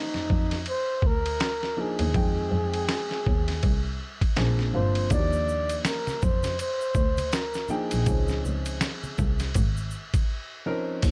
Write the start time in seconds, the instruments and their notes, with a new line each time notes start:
Already playing: upright piano F3 A#3 D#4 G4 D5, flugelhorn D#4
0.14 double bass F2, snare
0.30 double bass F2, kick
0.51 snare, ride
0.66 flugelhorn C5, ride
1.02 double bass D2, kick
1.07 flugelhorn A#4
1.26 ride
1.40 snare, hi-hat pedal, ride
1.63 snare
1.77 upright piano F3 A#3 D4 D#4 A#4
1.81 flugelhorn G#4
1.99 double bass D#2, ride
2.14 double bass F2, upright piano F3 G#3 C4 D#4 G5, kick, ride
2.51 double bass F2
2.74 ride
2.89 snare, hi-hat pedal, ride
3.11 snare
3.27 double bass D#2, kick
3.48 snare, ride
3.63 double bass C2, kick, ride
4.21 kick, ride
4.36 double bass A#1, upright piano F3 A#3 C4 D4 G#4, snare, hi-hat pedal, ride
4.59 snare
4.74 double bass G1, upright piano F3 A#3 C4 D4 F4, flugelhorn C5
4.95 ride
5.10 double bass D#2, upright piano F3 A#3 D4 D#4 F#4, flugelhorn D5, kick, ride, shaker
5.18 upright piano G4
5.33 shaker
5.49 shaker
5.69 ride, shaker
5.85 flugelhorn A#4, snare, hi-hat pedal, ride, shaker
6.07 snare, high conga, shaker
6.22 double bass F2, flugelhorn C5, kick, low conga, shaker
6.43 snare, ride, high conga, shaker
6.59 flugelhorn C5, ride, shaker
6.81 shaker
6.95 double bass D2, kick, shaker
7.17 ride, high conga, shaker
7.32 flugelhorn A#4, snare, hi-hat pedal, ride, shaker
7.54 snare, shaker
7.68 upright piano F3 A#3 D4 D#4 G5, flugelhorn G#4, low conga, shaker
7.91 double bass A#1, ride, shaker
8.06 double bass C#2, upright piano F3 C4 C#4 D#4 G#4, kick, ride, shaker
8.28 snare, shaker
8.45 double bass C#2, high conga, shaker
8.65 ride, shaker
8.81 snare, hi-hat pedal, ride, high conga, shaker
9.04 high conga, shaker
9.18 double bass C2, kick, low conga, shaker
9.39 snare, ride, shaker
9.54 double bass G#1, kick, ride, shaker
9.77 shaker
9.91 shaker
10.14 kick, ride, high conga, shaker
10.66 upright piano F3 C4 C#4 D#4 A#4
11.02 double bass D#2, upright piano F3 G3 D4, kick, crash, ride, shaker